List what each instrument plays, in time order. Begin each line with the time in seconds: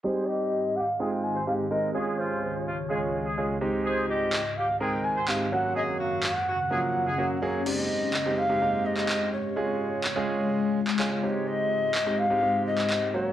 0.04 ambient pad G#2 D#3 C4 G4, grand piano G3 C4 D#4 G4, horn section G#3 G#4, shakuhachi C5 C#5
0.28 horn section G3 G4, shakuhachi D#5
0.76 horn section G3 G4, shakuhachi F#5
0.80 shakuhachi F5
0.99 grand piano G#3 C4 D#4 F4, horn section G#3 G#4, shakuhachi G5
1.24 shakuhachi G#5
1.35 horn section C4 C5
1.47 grand piano G#3 C4 D#4 G4, shakuhachi F5
1.71 grand piano G#3 C4 D#4 A#4, shakuhachi D#5
1.95 ambient pad C#2 C#3 G#3 F4, grand piano G#3 C#4 F4 G#4, horn section G#3 G#4, shakuhachi C#5
2.18 horn section F3 F4, shakuhachi C5
2.42 shakuhachi C5
2.60 shakuhachi C#5
2.66 horn section F3 F4
2.90 grand piano G#3 C#4 F4 G#4, horn section G#3 G#4
3.26 horn section G#3 G#4
3.37 grand piano G#3 C#4 F4 G#4
3.61 ambient pad G#2 D#3 C4 G4, grand piano G#3 C4 D#4 G4
3.85 horn section G#3 G#4, shakuhachi C5
4.09 horn section G3 G4, shakuhachi D#5
4.33 clap
4.57 horn section G3 G4, shakuhachi F5
4.80 grand piano G#3 C4 D#4 A#4, horn section G#3 G#4, shakuhachi G5
5.04 shakuhachi G#5
5.16 horn section C4 C5
5.28 grand piano G#3 C4 D#4 G4, shakuhachi F5, clap
5.52 ambient pad F#2 C#3 A#3 C#4, grand piano F#3 A#3 C#4 F#4, shakuhachi F#5
5.76 horn section G#3 G#4, shakuhachi D#5
6.00 horn section F#3 F#4, shakuhachi F5
6.23 shakuhachi F#5, clap
6.47 horn section F#3 F#4
6.71 grand piano F3 F#3 A#3 C#4, horn section G#3 G#4
7.07 horn section G#3 G#4
7.18 grand piano F#3 A#3 C#4 F#4
7.42 grand piano F#3 A#3 C#4 G#4, shakuhachi C#5
7.66 ambient pad G#2 G#3 C4 G4, grand piano G#3 C4 D#4 G4, shakuhachi D5, crash
7.81 shakuhachi D#5
8.14 clap
8.25 grand piano G#3 C4 D#4 G4
8.38 shakuhachi F5
8.49 grand piano G#3 C4 D#4 G4
8.61 grand piano G#3 C4 D#4 G4
8.86 shakuhachi D#5
8.97 clap
9.09 clap
9.33 shakuhachi C#5
9.56 ambient pad C#3 F4 C#5, grand piano G#3 C#4 F4 G#4
10.04 clap
10.16 grand piano G#3 C#4 F4 G#4
10.87 clap
10.99 grand piano G#3 C#4 F4 G#4, clap
11.11 grand piano G#3 C#4 F4 G#4
11.23 ambient pad G#2 G4 C5, grand piano G#3 C4 D#4 G4, shakuhachi C#5
11.47 shakuhachi D#5
11.95 clap
12.06 grand piano G#3 C4 D#4 G4
12.19 shakuhachi F5
12.30 grand piano G#3 C4 D#4 G4
12.42 grand piano G#3 C4 D#4 G4
12.66 shakuhachi D#5
12.78 clap
12.90 clap
13.14 grand piano F#3 A#3 C#4 F#4, shakuhachi C5
13.25 shakuhachi C#5